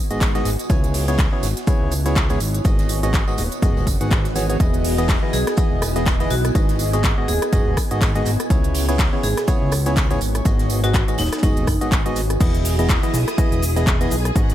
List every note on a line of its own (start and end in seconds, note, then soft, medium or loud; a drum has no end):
0.00 0.69 B3 medium
0.00 1.39 F#4 medium
0.00 1.39 D#5 medium
0.00 2.41 G#5 medium
0.10 0.42 G#1 loud
0.10 0.32 G#2 medium
0.10 0.32 B3 medium
0.10 0.32 F#4 medium
0.10 0.32 G#4 medium
0.10 0.32 D#5 loud
0.10 closed hi-hat medium
0.10 tambourine soft
0.21 kick loud
0.21 snare loud
0.21 clap loud
0.21 closed hi-hat medium
0.21 tambourine medium
0.21 shaker medium
0.35 0.50 G#2 medium
0.35 0.50 B3 medium
0.35 0.50 F#4 medium
0.35 0.50 G#4 medium
0.35 0.50 D#5 loud
0.35 snare medium
0.35 closed hi-hat soft
0.35 tambourine soft
0.45 0.57 G#1 medium
0.45 snare medium
0.45 open hi-hat medium
0.45 tambourine medium
0.45 shaker medium
0.59 closed hi-hat medium
0.59 tambourine soft
0.69 1.28 C#2 loud
0.69 1.05 C#3 medium
0.69 12.41 B3 medium
0.69 1.05 B3 medium
0.69 1.05 E4 medium
0.69 1.05 G#4 medium
0.69 1.05 C#5 medium
0.69 kick loud
0.69 closed hi-hat medium
0.69 tambourine medium
0.69 shaker medium
0.84 closed hi-hat soft
0.84 tambourine soft
0.90 2.41 E4 medium
0.90 open hi-hat medium
0.90 open hi-hat loud
0.95 3.30 C#5 medium
0.95 tambourine medium
1.08 1.29 C#3 medium
1.08 1.29 B3 medium
1.08 1.29 E4 medium
1.08 1.29 G#4 medium
1.08 1.29 C#5 loud
1.08 closed hi-hat soft
1.08 tambourine soft
1.18 kick loud
1.18 snare loud
1.18 clap loud
1.18 closed hi-hat medium
1.18 tambourine soft
1.18 shaker medium
1.33 1.48 C#3 medium
1.33 1.48 B3 medium
1.33 1.48 E4 medium
1.33 1.48 G#4 medium
1.33 1.48 C#5 medium
1.43 1.54 G#1 loud
1.43 snare medium
1.43 open hi-hat loud
1.43 tambourine medium
1.43 shaker medium
1.57 snare soft
1.57 closed hi-hat medium
1.57 tambourine soft
1.67 1.94 C#3 loud
1.67 1.94 B3 medium
1.67 1.94 E4 medium
1.67 1.94 G#4 medium
1.67 1.94 C#5 loud
1.67 kick loud
1.67 closed hi-hat medium
1.67 tambourine medium
1.67 shaker medium
1.81 2.37 C#2 medium
1.91 open hi-hat loud
1.91 tambourine medium
1.91 shaker medium
2.06 2.27 C#3 medium
2.06 2.27 B3 medium
2.06 2.27 E4 medium
2.06 2.27 G#4 medium
2.06 2.27 C#5 medium
2.06 snare soft
2.06 closed hi-hat medium
2.06 tambourine soft
2.16 kick loud
2.16 snare loud
2.16 clap loud
2.16 closed hi-hat medium
2.16 tambourine medium
2.16 shaker medium
2.29 2.39 G#2 medium
2.29 2.39 B3 medium
2.29 2.39 E4 medium
2.29 2.39 G#4 medium
2.29 2.39 C#5 loud
2.29 closed hi-hat soft
2.29 tambourine soft
2.40 2.61 G#1 medium
2.40 open hi-hat loud
2.40 tambourine loud
2.40 shaker medium
2.54 5.39 F#4 medium
2.54 closed hi-hat medium
2.54 tambourine soft
2.59 9.19 D#5 medium
2.65 3.23 G#1 loud
2.65 3.00 G#2 medium
2.65 3.00 B3 medium
2.65 3.00 F#4 medium
2.65 3.00 G#4 medium
2.65 3.00 D#5 medium
2.65 kick loud
2.65 closed hi-hat medium
2.65 tambourine medium
2.65 shaker medium
2.78 snare soft
2.78 closed hi-hat soft
2.78 tambourine soft
2.89 open hi-hat loud
2.89 tambourine medium
2.89 shaker medium
3.03 3.24 G#2 medium
3.03 3.24 B3 medium
3.03 3.24 F#4 medium
3.03 3.24 G#4 medium
3.03 3.24 D#5 loud
3.03 closed hi-hat medium
3.03 closed hi-hat soft
3.03 tambourine soft
3.09 12.41 G#5 medium
3.13 kick loud
3.13 snare loud
3.13 clap loud
3.13 closed hi-hat medium
3.13 tambourine medium
3.13 shaker medium
3.27 3.43 G#2 medium
3.27 3.43 B3 medium
3.27 3.43 F#4 medium
3.27 3.43 G#4 medium
3.27 3.43 D#5 medium
3.27 tambourine soft
3.38 3.49 D#1 medium
3.38 open hi-hat medium
3.38 tambourine medium
3.38 shaker medium
3.51 closed hi-hat soft
3.51 tambourine soft
3.62 3.74 F#1 medium
3.62 3.89 G#2 loud
3.62 3.89 B3 medium
3.62 3.89 F#4 medium
3.62 3.89 G#4 medium
3.62 3.89 D#5 loud
3.62 kick loud
3.62 closed hi-hat medium
3.62 tambourine medium
3.62 shaker medium
3.76 3.85 D#1 loud
3.76 tambourine soft
3.87 3.98 F#1 loud
3.87 kick medium
3.87 open hi-hat loud
3.87 tambourine loud
3.87 shaker medium
4.00 4.57 G#1 medium
4.00 4.27 G#2 medium
4.00 4.27 B3 medium
4.00 4.27 F#4 medium
4.00 4.27 G#4 medium
4.00 4.27 F#5 medium
4.00 closed hi-hat soft
4.00 tambourine soft
4.11 kick loud
4.11 snare loud
4.11 clap loud
4.11 closed hi-hat medium
4.11 tambourine medium
4.11 shaker medium
4.24 snare soft
4.24 closed hi-hat soft
4.24 tambourine soft
4.35 4.46 E3 medium
4.35 4.46 B3 medium
4.35 4.46 F#4 medium
4.35 4.46 G#4 medium
4.35 4.46 C#5 medium
4.35 snare medium
4.35 open hi-hat medium
4.35 tambourine medium
4.35 shaker medium
4.50 4.58 E3 medium
4.50 4.58 B3 medium
4.50 4.58 F#4 medium
4.50 4.58 G#4 medium
4.50 4.58 C#5 medium
4.50 closed hi-hat medium
4.50 tambourine soft
4.60 5.19 E1 loud
4.60 4.95 E3 medium
4.60 4.95 B3 medium
4.60 4.95 E4 medium
4.60 4.95 G#4 medium
4.60 4.95 D#5 medium
4.60 kick loud
4.60 closed hi-hat medium
4.60 tambourine soft
4.60 shaker medium
4.73 closed hi-hat soft
4.73 tambourine soft
4.83 6.55 E4 medium
4.83 open hi-hat medium
4.83 open hi-hat loud
4.83 tambourine medium
4.98 5.19 E3 medium
4.98 5.19 B3 medium
4.98 5.19 E4 medium
4.98 5.19 G#4 medium
4.98 5.19 D#5 loud
4.98 closed hi-hat medium
4.98 tambourine soft
5.09 kick loud
5.09 snare loud
5.09 clap loud
5.09 closed hi-hat medium
5.09 tambourine medium
5.09 shaker loud
5.23 5.38 E3 medium
5.23 5.38 B3 medium
5.23 5.38 E4 medium
5.23 5.38 G#4 medium
5.23 5.38 D#5 medium
5.33 5.45 B1 loud
5.33 5.47 G#4 medium
5.33 snare medium
5.33 open hi-hat medium
5.33 tambourine medium
5.33 shaker medium
5.47 cross-stick medium
5.47 snare medium
5.47 closed hi-hat soft
5.47 tambourine soft
5.57 5.84 E3 loud
5.57 5.84 B3 medium
5.57 5.84 E4 medium
5.57 5.84 G#4 medium
5.57 5.84 D#5 loud
5.57 kick loud
5.57 closed hi-hat medium
5.57 tambourine medium
5.57 shaker medium
5.72 6.28 E1 medium
5.82 cross-stick medium
5.82 open hi-hat loud
5.82 tambourine medium
5.82 shaker medium
5.96 6.17 E3 medium
5.96 6.17 B3 medium
5.96 6.17 E4 medium
5.96 6.17 G#4 medium
5.96 6.17 D#5 medium
5.96 snare soft
5.96 closed hi-hat medium
5.96 tambourine soft
6.06 kick loud
6.06 snare loud
6.06 clap loud
6.06 closed hi-hat medium
6.06 tambourine medium
6.06 shaker medium
6.20 6.35 E3 medium
6.20 6.35 B3 medium
6.20 6.35 E4 medium
6.20 6.35 G#4 medium
6.20 6.35 D#5 loud
6.20 closed hi-hat soft
6.20 tambourine soft
6.30 6.51 B1 medium
6.30 6.45 F#4 medium
6.30 open hi-hat medium
6.30 tambourine medium
6.30 shaker medium
6.45 cross-stick medium
6.45 closed hi-hat medium
6.45 tambourine soft
6.55 7.14 G#1 loud
6.55 6.90 G#2 medium
6.55 6.90 B3 medium
6.55 6.90 F#4 medium
6.55 6.90 G#4 medium
6.55 6.90 D#5 medium
6.55 kick loud
6.55 closed hi-hat medium
6.55 tambourine soft
6.55 shaker medium
6.61 9.19 F#4 medium
6.69 snare soft
6.69 closed hi-hat soft
6.69 tambourine soft
6.79 open hi-hat loud
6.79 tambourine loud
6.79 shaker medium
6.93 7.15 G#2 medium
6.93 7.15 B3 medium
6.93 7.15 F#4 medium
6.93 7.15 G#4 medium
6.93 7.15 D#5 loud
6.93 closed hi-hat medium
6.93 closed hi-hat soft
6.93 tambourine soft
7.03 kick loud
7.03 snare loud
7.03 clap loud
7.03 closed hi-hat medium
7.03 tambourine medium
7.03 shaker medium
7.18 7.33 G#2 medium
7.18 7.33 B3 medium
7.18 7.33 F#4 medium
7.18 7.33 G#4 medium
7.18 7.33 D#5 medium
7.28 7.40 D#1 loud
7.28 7.67 G#4 medium
7.28 open hi-hat medium
7.28 tambourine medium
7.28 shaker medium
7.42 cross-stick medium
7.42 closed hi-hat medium
7.42 tambourine soft
7.53 7.64 F#1 medium
7.53 7.79 G#2 loud
7.53 7.79 B3 medium
7.53 7.79 F#4 medium
7.53 7.79 G#4 medium
7.53 7.79 D#5 loud
7.53 kick loud
7.53 closed hi-hat medium
7.53 tambourine medium
7.53 shaker medium
7.67 7.75 D#1 loud
7.77 kick medium
7.77 cross-stick medium
7.77 open hi-hat loud
7.77 tambourine loud
7.77 shaker medium
7.91 8.23 G#1 loud
7.91 8.12 G#2 medium
7.91 8.12 B3 medium
7.91 8.12 F#4 medium
7.91 8.12 G#4 medium
7.91 8.12 D#5 medium
7.91 closed hi-hat medium
7.91 tambourine soft
8.01 kick loud
8.01 snare loud
8.01 clap loud
8.01 closed hi-hat medium
8.01 tambourine medium
8.01 shaker medium
8.15 8.30 G#2 medium
8.15 8.30 B3 medium
8.15 8.30 F#4 medium
8.15 8.30 G#4 medium
8.15 8.30 D#5 loud
8.15 snare soft
8.15 closed hi-hat soft
8.15 tambourine soft
8.26 8.37 G#1 loud
8.26 snare medium
8.26 open hi-hat medium
8.26 tambourine medium
8.26 shaker medium
8.40 cross-stick medium
8.40 closed hi-hat medium
8.40 tambourine soft
8.50 9.09 C#2 loud
8.50 8.85 C#3 medium
8.50 8.85 B3 medium
8.50 8.85 E4 medium
8.50 8.85 G#4 medium
8.50 8.85 C#5 medium
8.50 kick loud
8.50 closed hi-hat medium
8.50 tambourine soft
8.50 shaker medium
8.60 10.21 E4 medium
8.60 11.10 C#5 medium
8.60 closed hi-hat soft
8.60 tambourine soft
8.74 open hi-hat medium
8.74 open hi-hat loud
8.74 tambourine medium
8.89 9.10 C#3 medium
8.89 9.10 B3 medium
8.89 9.10 E4 medium
8.89 9.10 G#4 medium
8.89 9.10 C#5 loud
8.89 closed hi-hat medium
8.89 tambourine soft
8.99 kick loud
8.99 snare loud
8.99 clap loud
8.99 closed hi-hat medium
8.99 tambourine soft
8.99 shaker medium
9.13 9.28 C#3 medium
9.13 9.28 B3 medium
9.13 9.28 E4 medium
9.13 9.28 G#4 medium
9.13 9.28 C#5 medium
9.23 9.35 G#1 loud
9.23 9.37 G#4 medium
9.23 open hi-hat medium
9.23 tambourine medium
9.23 shaker medium
9.37 cross-stick medium
9.37 snare medium
9.37 closed hi-hat medium
9.37 tambourine soft
9.47 9.74 C#3 loud
9.47 9.74 B3 medium
9.47 9.74 E4 medium
9.47 9.74 G#4 medium
9.47 9.74 C#5 loud
9.47 kick loud
9.47 closed hi-hat medium
9.47 tambourine soft
9.47 shaker medium
9.62 10.18 C#2 medium
9.72 cross-stick medium
9.72 open hi-hat loud
9.72 tambourine medium
9.72 shaker medium
9.86 10.07 C#3 medium
9.86 10.07 B3 medium
9.86 10.07 E4 medium
9.86 10.07 G#4 medium
9.86 10.07 C#5 medium
9.86 snare soft
9.86 closed hi-hat medium
9.86 tambourine soft
9.96 kick loud
9.96 snare loud
9.96 clap loud
9.96 closed hi-hat medium
9.96 tambourine medium
9.96 shaker medium
10.10 10.20 G#2 loud
10.10 10.20 B3 medium
10.10 10.20 E4 medium
10.10 10.20 G#4 medium
10.10 10.20 C#5 loud
10.10 closed hi-hat soft
10.10 tambourine soft
10.21 10.41 G#1 medium
10.21 open hi-hat medium
10.21 tambourine medium
10.21 shaker medium
10.35 12.40 F#4 medium
10.35 cross-stick medium
10.35 closed hi-hat medium
10.35 tambourine soft
10.45 11.04 G#1 loud
10.45 10.80 G#2 medium
10.45 10.80 B3 medium
10.45 10.80 F#4 medium
10.45 10.80 G#4 medium
10.45 10.80 D#5 medium
10.45 kick loud
10.45 closed hi-hat medium
10.45 tambourine soft
10.45 shaker medium
10.57 12.40 D#5 medium
10.57 snare soft
10.57 closed hi-hat soft
10.57 tambourine soft
10.70 open hi-hat loud
10.70 tambourine medium
10.70 shaker medium
10.83 11.05 G#2 medium
10.83 11.05 B3 medium
10.83 11.05 F#4 medium
10.83 10.94 F#4 medium
10.83 11.05 G#4 medium
10.83 11.05 D#5 loud
10.83 closed hi-hat medium
10.83 closed hi-hat soft
10.83 tambourine soft
10.94 kick loud
10.94 snare loud
10.94 clap loud
10.94 closed hi-hat medium
10.94 tambourine medium
10.94 shaker medium
11.08 11.23 G#2 medium
11.08 11.23 B3 medium
11.08 11.23 F#4 medium
11.08 11.23 G#4 medium
11.08 11.23 D#5 medium
11.08 closed hi-hat soft
11.08 tambourine soft
11.18 11.30 D#1 loud
11.18 11.88 D#4 medium
11.18 snare medium
11.18 open hi-hat medium
11.18 tambourine medium
11.18 shaker medium
11.26 snare medium
11.26 shaker medium
11.32 cross-stick medium
11.32 snare medium
11.32 closed hi-hat medium
11.32 tambourine soft
11.32 shaker medium
11.37 snare medium
11.37 shaker medium
11.43 11.54 F#1 medium
11.43 11.69 G#2 loud
11.43 11.69 B3 medium
11.43 11.69 F#4 medium
11.43 11.69 G#4 medium
11.43 11.69 D#5 loud
11.43 kick loud
11.43 closed hi-hat medium
11.43 tambourine medium
11.43 shaker medium
11.56 11.65 D#1 loud
11.56 closed hi-hat soft
11.56 tambourine soft
11.67 11.79 F#1 loud
11.67 kick medium
11.67 cross-stick medium
11.67 open hi-hat loud
11.67 tambourine medium
11.67 shaker medium
11.81 12.37 G#1 medium
11.81 12.02 G#2 medium
11.81 12.02 B3 medium
11.81 12.02 F#4 medium
11.81 12.02 G#4 medium
11.81 12.02 D#5 loud
11.81 closed hi-hat medium
11.81 tambourine soft
11.92 kick loud
11.92 clap loud
11.92 closed hi-hat medium
11.92 tambourine soft
11.92 shaker medium
12.06 12.21 G#2 loud
12.06 12.21 B3 medium
12.06 12.21 F#4 medium
12.06 12.21 G#4 medium
12.06 12.21 D#5 loud
12.06 closed hi-hat soft
12.06 tambourine soft
12.16 snare medium
12.16 open hi-hat medium
12.16 tambourine medium
12.16 shaker medium
12.30 cross-stick medium
12.30 closed hi-hat medium
12.30 tambourine soft
12.40 12.99 E1 loud
12.40 12.76 E3 medium
12.40 12.76 B3 medium
12.40 12.76 E4 medium
12.40 14.34 E4 medium
12.40 12.76 G#4 medium
12.40 14.55 G#4 medium
12.40 12.76 D#5 medium
12.40 14.34 D#6 medium
12.40 kick loud
12.40 closed hi-hat medium
12.40 crash loud
12.40 cabasa soft
12.40 shaker medium
12.55 closed hi-hat soft
12.55 cabasa soft
12.65 open hi-hat medium
12.65 open hi-hat loud
12.65 cabasa medium
12.79 13.00 E3 medium
12.79 13.00 B3 medium
12.79 13.00 E4 medium
12.79 13.00 G#4 medium
12.79 13.00 D#5 loud
12.79 closed hi-hat soft
12.79 cabasa soft
12.89 kick loud
12.89 snare loud
12.89 clap loud
12.89 closed hi-hat medium
12.89 cabasa soft
12.89 shaker medium
13.03 13.18 E3 medium
13.03 13.18 B3 medium
13.03 13.18 E4 medium
13.03 13.18 G#4 medium
13.03 13.18 D#5 medium
13.03 closed hi-hat soft
13.03 cabasa soft
13.14 13.25 B1 loud
13.14 snare medium
13.14 open hi-hat medium
13.14 cabasa medium
13.14 shaker medium
13.27 cross-stick medium
13.27 snare medium
13.27 closed hi-hat soft
13.27 cabasa soft
13.38 13.64 E3 loud
13.38 13.64 B3 medium
13.38 13.64 E4 loud
13.38 13.64 G#4 medium
13.38 13.64 D#5 loud
13.38 kick loud
13.38 closed hi-hat medium
13.38 cabasa soft
13.38 shaker medium
13.52 14.08 E1 medium
13.52 closed hi-hat soft
13.52 cabasa soft
13.62 open hi-hat loud
13.62 cabasa medium
13.62 shaker medium
13.76 13.97 E3 medium
13.76 13.97 B3 medium
13.76 13.97 E4 medium
13.76 13.97 G#4 medium
13.76 13.97 D#5 medium
13.76 snare soft
13.76 closed hi-hat soft
13.76 cabasa soft
13.87 kick loud
13.87 snare loud
13.87 clap loud
13.87 closed hi-hat medium
13.87 cabasa soft
13.87 shaker medium
14.01 14.16 E3 loud
14.01 14.16 B3 medium
14.01 14.16 E4 medium
14.01 14.16 G#4 medium
14.01 14.16 D#5 loud
14.01 closed hi-hat soft
14.01 cabasa soft
14.11 14.32 B1 medium
14.11 open hi-hat medium
14.11 cabasa medium
14.11 shaker medium
14.25 cross-stick medium
14.25 closed hi-hat soft
14.25 cabasa soft
14.36 14.55 G#1 loud
14.36 14.55 G#2 medium
14.36 14.55 B3 medium
14.36 14.55 F#4 medium
14.36 14.55 G#4 medium
14.36 14.55 D#5 medium
14.36 14.55 F#5 medium
14.36 14.55 B5 medium
14.36 kick loud
14.36 closed hi-hat medium
14.36 cabasa soft
14.36 shaker medium
14.50 snare soft
14.50 closed hi-hat soft
14.50 cabasa soft